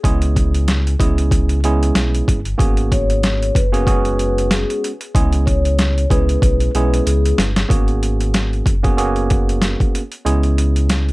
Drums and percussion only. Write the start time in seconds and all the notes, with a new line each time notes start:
0.04 kick, closed hi-hat
0.22 closed hi-hat
0.36 kick, closed hi-hat
0.54 closed hi-hat
0.68 snare, closed hi-hat
0.87 closed hi-hat
1.00 kick, closed hi-hat
1.18 closed hi-hat
1.31 kick, closed hi-hat
1.49 closed hi-hat
1.64 closed hi-hat
1.83 closed hi-hat
1.95 snare, closed hi-hat
2.15 closed hi-hat
2.28 kick, closed hi-hat
2.45 closed hi-hat
2.59 kick, closed hi-hat
2.77 closed hi-hat
2.92 kick, closed hi-hat
3.10 closed hi-hat
3.23 snare, closed hi-hat
3.42 closed hi-hat
3.55 kick, closed hi-hat
3.74 closed hi-hat
3.87 kick, closed hi-hat
4.05 closed hi-hat
4.19 closed hi-hat
4.38 closed hi-hat
4.51 snare, closed hi-hat
4.70 closed hi-hat
4.84 closed hi-hat
5.01 closed hi-hat
5.15 kick, closed hi-hat
5.33 closed hi-hat
5.47 kick, closed hi-hat
5.65 closed hi-hat
5.79 snare, closed hi-hat
5.98 closed hi-hat
6.10 kick, closed hi-hat
6.29 closed hi-hat
6.42 kick, closed hi-hat
6.60 closed hi-hat
6.75 closed hi-hat
6.94 closed hi-hat
7.07 closed hi-hat
7.25 closed hi-hat
7.38 snare, closed hi-hat
7.56 snare, closed hi-hat
7.70 kick, closed hi-hat
7.88 closed hi-hat
8.03 closed hi-hat
8.21 closed hi-hat
8.34 snare, closed hi-hat
8.53 closed hi-hat
8.66 kick, closed hi-hat
8.84 kick, closed hi-hat
8.98 closed hi-hat
9.16 closed hi-hat
9.30 kick, closed hi-hat
9.49 closed hi-hat
9.62 snare, closed hi-hat
9.80 kick, closed hi-hat
9.95 closed hi-hat
10.12 closed hi-hat
10.26 closed hi-hat
10.43 closed hi-hat
10.58 closed hi-hat
10.76 closed hi-hat
10.89 snare, closed hi-hat
11.09 closed hi-hat